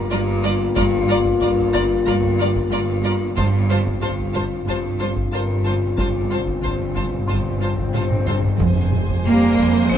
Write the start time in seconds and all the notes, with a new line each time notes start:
Already playing: G1 A#3 F4 A#4 A#5 D#7
0.11 G1 G2 G3 F4 D5 A#5
0.43 G3 F4 D5 A#5
0.76 G1 G2 F4 D5 A#5, taiko
1.08 G3 F4 D5 A#5
1.25 taiko
1.41 G1 G2 G3 F4 D5 A#5, taiko low
1.57 taiko low
1.73 G2 F4 D5 A#5 A6, taiko
2.06 G1 G2 F4 D5 A#5, taiko
2.23 taiko low
2.39 G3 F4 D5 A#5
2.56 taiko
2.71 G1 G2 G3 F4 D5 A#5
3.04 G3 F4 D5 A#5
3.37 G1 G2 C4 F4 C5 A5, taiko
3.67 G2 G3 F4 C5 A5
3.87 G2, taiko
3.97 G2
4.02 G1 G2 G3 F4 C5 A5, taiko low
4.12 G2
4.19 G2, taiko low
4.28 G2
4.34 G2 F4 C5 A5, taiko
4.42 G2
4.50 G2
4.57 G2
4.65 G1 G2 F4 C5 A5, taiko
4.80 G2
4.84 G2, taiko low
4.94 G2
5.00 G3 F4 C5 A5
5.10 G2
5.17 G2, taiko
5.25 G2
5.33 G1 G2 G3 F4 A#4 C5 A5
5.40 G2
5.48 G2
5.55 G2
5.62 G2 G3 F4 A5
5.67 C5
5.71 G2
5.78 G2
5.85 G2
5.92 G2
5.98 G1 G2 F4 C5 A5, taiko, swell
6.07 G2
6.15 G2
6.22 G2
6.30 G2 G3 F4 C5 A5
6.38 G2
6.45 G2, taiko
6.53 G2
6.60 G1 G2 F4, taiko low
6.64 G2 G3 C5 A5
6.74 G2
6.80 G2, taiko low
6.89 G2
6.95 G2 F4 C5 A5, taiko
7.04 G2
7.12 G2
7.19 G2
7.27 G1 G2 F4 C5 A5 C6, taiko
7.34 G2
7.42 G2, taiko low
7.50 G2
7.57 G2 F4
7.62 G2 G3 C5 A5
7.73 G2
7.78 G2, taiko
7.87 G2
7.94 G1 G2 G3 F4 C5 A5, taiko mid
8.02 G2
8.09 G2, taiko mid
8.17 G2
8.25 G2 G3 F4 C5 A5, taiko low-mid
8.32 G2
8.40 G2
8.44 G2, taiko low
8.58 F2 C3 C5 G#5, taiko, impact
8.92 F2, taiko mid
9.09 taiko
9.23 F2 G3 A#3, taiko mid
9.58 F2, taiko
9.89 F2 G#3 C4 C5 C#7, taiko